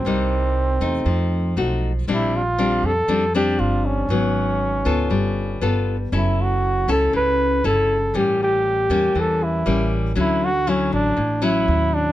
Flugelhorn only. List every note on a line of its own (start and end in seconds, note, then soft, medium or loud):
0.00 1.84 C4 medium
2.11 2.38 E4 medium
2.36 2.88 F4 medium
2.86 3.35 A4 loud
3.36 3.61 G4 medium
3.60 3.87 F4 medium
3.85 5.87 C#4 medium
6.18 6.43 E4 medium
6.42 6.90 F#4 medium
6.92 7.14 A4 medium
7.16 7.62 B4 loud
7.66 8.18 A4 medium
8.16 8.40 G4 medium
8.43 9.21 G4 medium
9.20 9.45 A4 medium
9.44 9.93 E4 medium
10.19 10.46 E4 medium
10.45 10.71 F#4 loud
10.69 10.93 C#4 medium
10.94 11.46 D4 medium
11.44 11.95 E4 loud
11.94 12.12 D4 loud